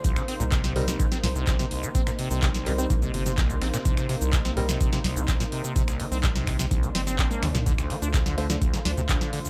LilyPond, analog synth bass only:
\new Staff \with { instrumentName = "Analog synth bass" } { \clef bass \time 4/4 \key c \dorian \tempo 4 = 126 c,16 r8 c,4~ c,16 r8 c,16 c,16 c,16 r8. | r8. c,4~ c,16 c,8 g,,8. c,16 bes,,16 r16 | c,16 r8 c,4~ c,16 r8 c,16 c,16 c,16 r8. | r8. c,4~ c,16 c,8 g,,8. r16 ees,16 c,16 |
d,16 r8 d,4~ d,16 r8 d,16 d,16 d,16 r8. | }